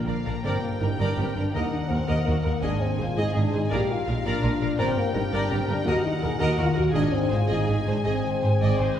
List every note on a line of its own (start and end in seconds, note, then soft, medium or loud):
0.00 0.36 A#2 soft
0.00 0.14 D3 soft
0.00 0.25 F3 medium
0.00 0.25 D4 soft
0.00 0.62 D4 soft
0.00 0.41 F4 soft
0.00 0.79 A#4 soft
0.06 0.14 A#1 soft
0.06 0.14 A#4 soft
0.06 0.15 D5 soft
0.06 0.26 F5 soft
0.25 0.33 A#1 soft
0.25 0.33 A#4 soft
0.25 0.33 D5 soft
0.25 0.45 A#5 soft
0.43 0.52 G1 medium
0.43 0.51 G2 soft
0.43 1.55 G2 soft
0.43 0.61 C4 medium
0.43 0.61 A#4 soft
0.43 0.61 D5 soft
0.43 1.51 G5 soft
0.61 0.80 A#3 soft
0.61 1.34 D4 soft
0.80 0.89 G1 soft
0.80 0.88 G2 soft
0.80 0.89 D#4 soft
0.80 0.88 A#4 soft
0.80 1.16 A#4 soft
0.80 0.89 A#4 soft
0.99 1.07 G1 soft
0.99 1.06 G2 medium
0.99 1.07 D4 soft
0.99 1.16 A#4 medium
0.99 1.55 D5 soft
0.99 1.17 D5 soft
1.17 1.25 G1 soft
1.17 1.25 G2 soft
1.17 1.36 C4 soft
1.17 1.25 G4 soft
1.17 1.25 A#4 soft
1.36 1.44 G1 soft
1.36 1.43 G2 soft
1.36 1.55 D4 soft
1.36 1.54 D4 soft
1.36 1.43 A#4 soft
1.36 1.44 A#4 soft
1.52 1.61 D#2 soft
1.52 1.62 D#2 medium
1.52 2.64 D#3 soft
1.52 1.71 D#4 medium
1.52 1.70 A#4 medium
1.52 1.71 D#5 soft
1.52 2.63 F#5 soft
1.71 1.90 D4 medium
1.71 2.42 D#4 soft
1.89 1.97 D#2 soft
1.89 1.98 D#2 soft
1.89 2.07 C4 medium
1.89 2.25 A#4 soft
1.89 1.97 A#4 soft
1.93 2.00 A#4 soft
2.08 2.15 D#2 medium
2.08 2.16 D#2 soft
2.08 2.63 A#3 medium
2.08 2.24 A#4 soft
2.08 2.25 D#5 soft
2.25 2.34 D#2 soft
2.25 2.35 F#4 soft
2.25 2.33 A#4 soft
2.25 2.64 A#4 soft
2.44 2.52 D#2 soft
2.44 3.72 D#4 soft
2.44 2.51 A#4 soft
2.44 2.53 A#4 soft
2.62 2.70 G#1 medium
2.62 2.70 G#2 medium
2.62 3.72 G#2 soft
2.62 2.81 D4 medium
2.62 2.79 G#4 medium
2.62 2.79 D#5 soft
2.62 3.69 G#5 soft
2.81 2.99 C4 medium
2.81 3.52 C4 soft
2.98 3.06 G#1 soft
2.98 3.06 G#2 soft
2.98 3.17 F4 medium
2.98 3.05 G#4 soft
2.98 3.34 G#4 soft
2.98 3.07 C5 soft
3.16 3.24 G#1 soft
3.16 3.24 G#2 soft
3.16 3.36 D#4 medium
3.16 3.34 G#4 medium
3.16 3.72 C5 soft
3.16 3.34 D#5 medium
3.33 3.43 G#1 soft
3.33 3.43 G#2 soft
3.33 3.41 G#4 soft
3.33 3.72 G#4 soft
3.33 3.42 G#4 soft
3.38 3.55 D4 medium
3.51 3.61 G#1 soft
3.51 3.61 G#2 soft
3.51 3.72 C4 soft
3.51 3.61 G#4 soft
3.51 3.59 C5 soft
3.58 3.73 D#4 medium
3.70 3.79 A#1 medium
3.70 4.80 A#2 medium
3.70 3.78 A#2 medium
3.70 3.88 A#4 medium
3.70 3.87 D5 soft
3.70 4.79 F5 medium
3.75 3.91 G4 medium
3.89 4.59 A#3 soft
3.89 4.08 F4 medium
4.07 4.15 A#1 soft
4.07 4.14 A#2 soft
4.07 4.17 D#4 medium
4.07 4.41 F4 soft
4.07 4.15 A#4 soft
4.24 4.33 A#1 medium
4.24 4.33 A#2 medium
4.24 4.78 D4 medium
4.24 5.31 A#4 soft
4.24 4.42 A#4 medium
4.24 4.42 D5 medium
4.43 4.51 A#1 soft
4.43 4.50 A#2 soft
4.43 4.80 F4 soft
4.43 4.51 F4 soft
4.43 4.50 A#4 soft
4.60 4.68 A#1 soft
4.60 4.68 A#2 soft
4.60 4.95 A#3 soft
4.60 4.68 A#4 soft
4.78 4.86 G1 medium
4.78 5.87 G2 medium
4.78 4.86 G2 medium
4.78 4.97 C4 medium
4.78 4.95 A#4 medium
4.78 4.95 D5 soft
4.78 5.84 G5 medium
4.96 5.67 A#3 soft
4.96 5.15 A#3 medium
5.14 5.22 G1 soft
5.14 5.22 G2 soft
5.14 5.22 D#4 medium
5.14 5.49 G4 soft
5.14 5.21 A#4 soft
5.14 5.22 A#4 soft
5.32 5.40 G1 medium
5.32 5.39 G2 medium
5.32 5.50 D4 medium
5.32 6.21 A#4 soft
5.32 5.50 A#4 medium
5.32 5.49 D5 medium
5.49 5.58 G1 soft
5.49 5.58 G2 soft
5.49 5.68 C4 medium
5.49 5.56 G4 soft
5.49 5.88 G4 soft
5.49 5.58 A#4 soft
5.68 5.76 G1 soft
5.68 5.76 G2 soft
5.68 6.96 A#3 soft
5.68 5.86 D4 medium
5.68 5.75 A#4 soft
5.68 5.76 A#4 soft
5.86 5.93 D#2 medium
5.86 6.96 D#3 medium
5.86 6.04 F#4 medium
5.86 6.03 A#4 medium
5.86 6.03 D#5 soft
5.86 6.95 F#5 medium
6.04 6.12 D#4 medium
6.04 6.75 D#4 soft
6.22 6.29 D#2 soft
6.22 6.30 D#2 soft
6.22 6.40 G#4 medium
6.22 6.30 A#4 soft
6.22 6.57 A#4 soft
6.22 6.31 A#4 soft
6.40 6.48 D#2 medium
6.40 6.58 F#4 medium
6.40 6.57 A#4 medium
6.40 9.00 D#5 medium
6.40 6.57 D#5 medium
6.58 6.66 D#2 soft
6.58 6.67 F4 medium
6.58 6.65 F#4 soft
6.58 6.65 A#4 soft
6.58 6.96 A#4 soft
6.75 6.84 D#2 soft
6.75 6.85 D#2 soft
6.75 7.48 D#4 soft
6.75 6.93 F#4 medium
6.75 6.83 A#4 soft
6.75 6.83 A#4 medium
6.92 7.02 G#1 medium
6.92 8.05 G#2 medium
6.92 7.02 G#2 medium
6.92 7.12 D4 medium
6.92 7.10 G#4 medium
6.92 7.12 D#5 soft
6.92 8.95 G#5 medium
7.12 7.86 G#3 soft
7.12 7.31 C4 medium
7.29 7.39 G#1 soft
7.29 7.39 G#2 soft
7.29 7.50 F4 medium
7.29 7.37 G#4 soft
7.29 7.66 G#4 soft
7.29 7.38 C5 soft
7.47 7.57 G#1 medium
7.47 7.57 G#2 medium
7.47 8.60 D#4 soft
7.47 7.64 G#4 medium
7.47 7.66 D#5 soft
7.53 7.89 D#4 medium
7.65 7.76 G#1 soft
7.65 7.76 G#2 soft
7.65 7.73 G#4 soft
7.65 7.75 G#4 soft
7.65 8.42 G#4 soft
7.85 7.95 G#1 soft
7.85 7.95 G#2 soft
7.85 8.97 G#3 soft
7.85 7.93 G#4 soft
7.85 7.95 C5 soft
7.89 7.97 D4 medium
8.04 8.13 G#1 medium
8.04 8.13 G#2 medium
8.04 9.00 G#2 medium
8.04 8.96 C4 medium
8.04 8.22 G#4 medium
8.04 8.22 D#5 soft
8.24 9.00 D#3 soft
8.41 8.50 G#1 soft
8.41 8.50 G#2 soft
8.41 8.49 G#4 soft
8.41 8.78 G#4 soft
8.41 8.50 C5 soft
8.59 8.69 G#1 medium
8.59 8.69 G#2 medium
8.59 9.00 D#4 soft
8.59 8.77 D5 medium
8.59 8.79 D#5 soft
8.79 8.87 G#1 soft
8.79 8.87 G#2 soft
8.79 9.00 G#4 soft
8.79 8.88 G#4 soft
8.79 8.98 C5 soft